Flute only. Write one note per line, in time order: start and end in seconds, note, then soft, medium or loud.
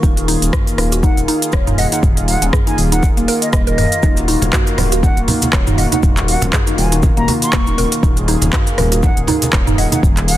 1.03 1.20 F#5 medium
1.78 1.87 F#5 medium
1.92 1.99 F#5 medium
2.28 2.45 F#5 loud
2.67 2.82 G#5 medium
2.92 3.07 F#5 medium
3.42 3.49 D#5 medium
3.53 3.62 D#5 medium
3.67 4.17 D#5 loud
5.03 5.20 F#5 medium
5.78 5.87 F#5 medium
5.92 5.99 F#5 medium
6.28 6.45 F#5 medium
6.78 6.95 G#5 medium
7.17 7.32 A#5 loud
7.42 7.92 C#6 loud
9.03 9.21 F#5 medium
9.78 9.87 F#5 medium
9.93 10.00 F#5 medium
10.28 10.37 F#5 medium